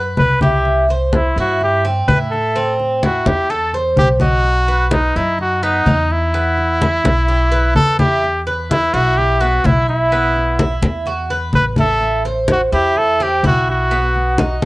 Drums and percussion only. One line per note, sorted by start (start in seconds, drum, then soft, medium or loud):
0.17 high conga medium
0.41 high conga medium
0.65 high conga soft
0.89 high conga soft
1.13 high conga medium
1.61 high conga soft
1.85 high conga soft
2.09 high conga medium
2.33 high conga soft
2.57 high conga soft
2.80 high conga soft
3.03 high conga medium
3.26 high conga medium
3.50 high conga soft
3.73 high conga soft
3.97 high conga medium
4.20 high conga medium
4.44 high conga soft
4.67 high conga soft
4.91 high conga medium
5.39 high conga soft
5.62 high conga soft
5.86 high conga medium
6.10 high conga soft
6.34 high conga soft
6.58 high conga soft
6.82 high conga medium
7.05 high conga medium
7.29 high conga soft
7.53 high conga soft
7.76 high conga medium
7.99 high conga medium
8.24 high conga soft
8.48 high conga soft
8.71 high conga medium
9.18 high conga soft
9.42 high conga soft
9.65 high conga medium
9.89 high conga soft
10.12 high conga soft
10.36 high conga soft
10.59 high conga medium
10.83 high conga medium
11.06 high conga soft
11.30 high conga soft
11.53 high conga medium
11.76 high conga medium
12.01 high conga soft
12.25 high conga soft
12.48 high conga medium
12.96 high conga soft
13.20 high conga soft
13.44 high conga medium
13.69 high conga soft
13.92 high conga soft
14.15 high conga soft
14.38 high conga medium